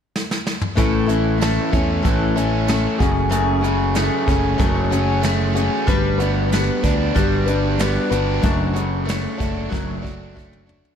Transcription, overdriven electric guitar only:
0.78 A2
1.10 E3
1.42 A3
1.73 C#4
2.04 E3
2.36 C#4
2.68 A3
2.99 F#2
3.31 F#2
3.64 C#3
3.96 A3
4.29 C#4
4.60 F#3
4.91 C#4
5.22 A3
5.55 C#4
5.87 G3
6.20 B3
6.52 B3
6.84 D4
7.16 G3
7.47 D4
7.80 B3
8.12 D4
8.43 F#2
8.75 C#3
9.05 A3
9.38 D4
9.70 F#3
10.02 D4
10.35 A3
10.66 D4

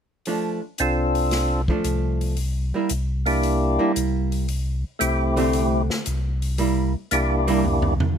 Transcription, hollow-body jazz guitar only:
0.27 F3 A3 D4
1.69 F3 A3 D4
2.74 G3 A#3 E4
3.79 G3 A#3 E4
5.36 D3 A3 C4 G4
6.58 G3 A#3 E4
7.47 G3 A#3 E4

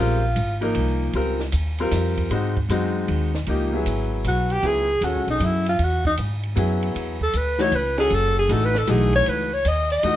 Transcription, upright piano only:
Already playing: G3 G#3 C4 C#4 F4 G4 C5
0.00 A#4
0.61 F3 A#3 D#4 A#4
1.14 G3 C4 F4 A#4
1.79 G3 C4 F4 A#4
2.31 G#3 C4 D#4 F#4
2.70 G#3 C4 D#4 F#4
3.48 F3 A#3 D#4 G4
3.73 F#3 B3 E4 G#4
4.63 F#3 B3 E4 G#4
5.02 C#4 F#4 G#4 A4
6.56 F#3 B3 E4 G#4
7.58 E3 A3 D#4 F#4
7.97 C#4 F#4 G#4 A4
8.49 E3 A3 D#4 F#4
8.87 E3 A3 D#4 F#4
10.03 E3 A3 D#4 F#4

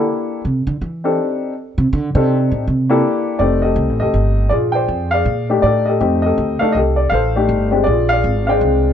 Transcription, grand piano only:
Already playing: A#3 D4 E4 G4 A4
1.04 C4 D4 D#4 G4 A4
2.15 C4 D4 D#4 G4 A4
2.89 A#3 D4 E4 G4 A4
3.39 A3 C4 D#4 G4 A4 D5
3.62 G4 A4 D#5
4.00 G4 A4 D#5
4.49 F4 G#4 D5
4.72 C5 D5 G5
5.11 G#4 D5 F5
5.49 A3 D4 D#4 G4
5.62 G4 A4 D5
5.86 G4 A4 D#5
6.00 A3 C4 D#4 G4
6.22 A4 D#5
6.26 G4
6.59 A3 D4 D#4 A4 F5
6.72 D#5
6.77 G4 A4
6.96 D5
7.10 A4 F5
7.14 C5
7.36 A3 D4 D#4 G4
7.71 G#3 C4 D4 G4
7.84 G#4 D5
7.88 F4
8.09 G#4 D5 F5
8.47 G#3 C4 D4 G#4 D5 F5 G5

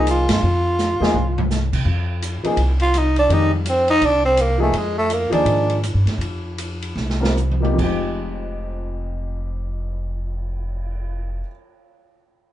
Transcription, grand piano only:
Already playing: F3 A#3 D#4 G#4
1.00 F3 A#3 D#4 G#4
2.44 F3 A#3 D#4 G#4
3.29 D#3 G#3 D4 G4
4.58 F3 A#3 D#4 G#4
5.30 D#3 F3 A#3 G#4
7.20 G3 C4 F4 A#4
7.60 F3 A#3 D#4 G4
7.72 F2 F3
7.79 G#3 D#4
7.84 G4

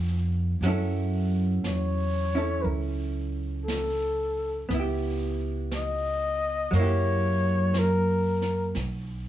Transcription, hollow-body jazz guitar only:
Already playing: F3 B3 D4
0.63 F#3 C#4 E4
0.68 A4
2.35 C#4 E4 A4
4.69 B3
4.74 E4
4.80 G4
6.71 F#3 A#3
6.80 E4 G4

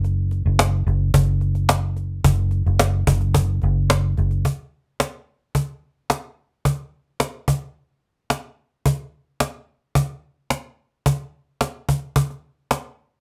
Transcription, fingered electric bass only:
Already playing: F#1
0.46 F#1
0.87 F#1
1.14 F#1
2.25 F#1
2.66 F#1
3.07 F#1
3.63 F#1
4.18 F#1

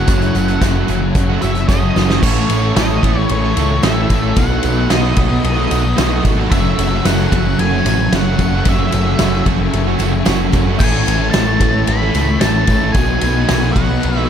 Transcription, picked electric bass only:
0.08 F#1
0.35 F#1
0.62 F#1
0.89 F#1
1.15 F#1
1.43 F#1
1.69 F#1
1.96 F#1
2.23 A1
2.49 A1
2.76 A1
3.03 A1
3.30 A1
3.57 C#2
3.84 A1
4.10 A1
4.37 B1
4.64 B1
4.91 B1
5.17 B1
5.44 B1
5.71 B1
5.98 B1
6.25 G#1
6.52 F#1
6.78 F#1
7.05 F#1
7.32 F#1
7.59 F#1
7.85 A1
8.12 F#1
8.39 F#1
8.66 F#1
8.93 F#1
9.20 F#1
9.46 F#1
9.73 F#1
9.99 F#1
10.27 F#1
10.54 F#1
10.80 A1
11.07 A1
11.35 A1
11.61 A1
11.88 A1
12.15 C#2
12.42 A1
12.68 A1
12.95 B1
13.23 B1
13.50 B1
13.76 B1
14.05 B1

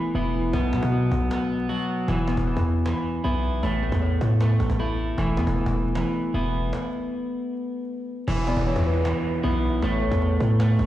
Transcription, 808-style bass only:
0.15 E1
0.53 B1
0.73 B2
0.83 B2
1.11 B1
2.08 E1
2.37 E1
2.57 E2
3.24 B1
3.63 A1
3.92 E2
4.21 A2
4.60 A1
4.70 A1
5.18 E1
5.37 E2
5.47 E1
5.66 E1
6.34 E1
8.28 E1
8.57 E1
8.76 E2
9.44 B1
9.82 A1
10.11 E2
10.40 A2
10.79 A1

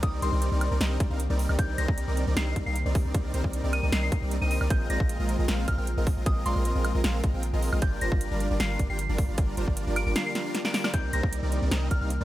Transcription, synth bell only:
0.03 D#6
0.22 C6
1.59 G6
1.78 A#6
2.37 C7
2.66 C7
3.73 D#7
3.83 D#7
3.93 C7
4.03 C7
4.42 D#7
4.51 D#7
4.70 G6
4.90 A#6
5.68 F6
5.78 F6
6.26 D#6
6.46 C6
7.82 G6
8.02 A#6
8.60 C7
8.90 C7
9.96 D7
10.07 D7
10.16 C7
10.26 C7
10.65 D7
10.74 D7
10.94 G6
11.13 A#6
11.91 F6
12.01 F6

